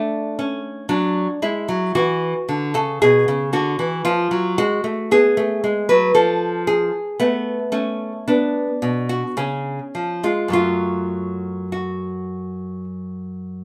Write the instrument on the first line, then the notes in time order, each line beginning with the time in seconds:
nylon-string guitar
Already playing: A3 D4
0.39 C#4
0.89 F#3 D4
1.42 G#3 E4
1.69 F#3
1.95 E3 F#4
2.49 D3
2.74 C#3 A4
3.02 B2 G#4
3.28 C#3
3.53 D3 F#4
3.79 E3
4.05 F3 F4
4.31 F#3
4.58 G#3 F#4
4.84 A3
5.11 B3 G#4
5.37 A3
5.64 G#3
5.89 F#3 B4
6.15 F3 A4
6.67 G#4
7.20 A3 B3
7.72 A3 C#4
8.28 B3 D4
8.82 B2
9.09 F#4
9.37 C#3 C#4
9.95 F3
10.23 G#3 F4
10.48 F#2 F#3 A3
10.53 F4
11.72 F#4